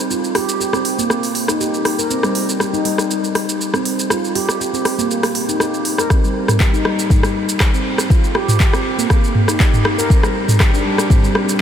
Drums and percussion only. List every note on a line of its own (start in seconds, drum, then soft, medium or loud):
0.11 shaker medium
0.24 shaker soft
0.35 cross-stick medium
0.35 open hi-hat medium
0.49 shaker medium
0.61 shaker medium
0.73 cross-stick medium
0.73 shaker soft
0.85 open hi-hat medium
0.99 shaker medium
1.10 cross-stick medium
1.10 shaker medium
1.23 open hi-hat medium
1.23 shaker soft
1.35 open hi-hat medium
1.48 cross-stick medium
1.48 shaker medium
1.61 shaker medium
1.74 shaker soft
1.85 cross-stick medium
1.85 open hi-hat medium
1.99 shaker medium
2.11 shaker medium
2.23 cross-stick medium
2.23 shaker soft
2.35 open hi-hat medium
2.49 shaker medium
2.60 cross-stick medium
2.60 shaker medium
2.74 shaker soft
2.85 open hi-hat medium
2.98 cross-stick medium
2.98 shaker medium
3.11 shaker medium
3.24 shaker soft
3.35 cross-stick medium
3.35 open hi-hat medium
3.49 shaker medium
3.61 shaker medium
3.74 cross-stick medium
3.74 shaker soft
3.85 open hi-hat medium
3.99 shaker medium
4.10 cross-stick medium
4.10 shaker medium
4.24 shaker soft
4.35 open hi-hat medium
4.49 cross-stick medium
4.49 shaker medium
4.61 shaker medium
4.74 shaker soft
4.85 cross-stick medium
4.85 open hi-hat medium
4.99 shaker medium
5.11 shaker medium
5.23 cross-stick medium
5.23 open hi-hat medium
5.23 shaker soft
5.35 open hi-hat medium
5.49 shaker medium
5.60 cross-stick medium
5.60 shaker medium
5.74 shaker soft
5.85 open hi-hat medium
5.98 cross-stick medium
5.98 shaker medium
6.10 kick loud
6.10 cross-stick medium
6.10 shaker medium
6.24 shaker soft
6.48 cross-stick medium
6.48 mid tom medium
6.48 shaker medium
6.60 kick loud
6.60 clap loud
6.60 shaker medium
6.74 shaker soft
6.85 cross-stick medium
6.99 shaker medium
7.10 kick loud
7.10 mid tom medium
7.10 shaker medium
7.23 cross-stick medium
7.23 shaker soft
7.49 shaker medium
7.60 kick loud
7.60 cross-stick medium
7.60 clap loud
7.60 shaker medium
7.74 shaker soft
7.98 cross-stick medium
7.98 shaker medium
8.10 kick loud
8.10 shaker medium
8.24 shaker soft
8.35 cross-stick medium
8.48 mid tom medium
8.48 shaker medium
8.60 kick loud
8.60 clap medium
8.60 shaker medium
8.73 cross-stick medium
8.73 shaker soft
8.99 shaker medium
9.10 kick loud
9.10 cross-stick medium
9.10 shaker medium
9.24 shaker soft
9.35 mid tom medium
9.48 cross-stick medium
9.48 shaker medium
9.60 kick loud
9.60 clap medium
9.60 shaker medium
9.73 mid tom medium
9.73 shaker soft
9.85 cross-stick loud
9.99 shaker medium
10.10 kick loud
10.10 shaker medium
10.23 cross-stick medium
10.23 shaker soft
10.48 mid tom medium
10.48 shaker medium
10.60 kick loud
10.60 cross-stick medium
10.60 clap loud
10.60 shaker medium
10.74 shaker soft
10.98 cross-stick medium
10.98 shaker medium
11.10 kick loud
11.10 mid tom medium
11.10 shaker medium
11.24 shaker soft
11.35 cross-stick medium
11.49 shaker medium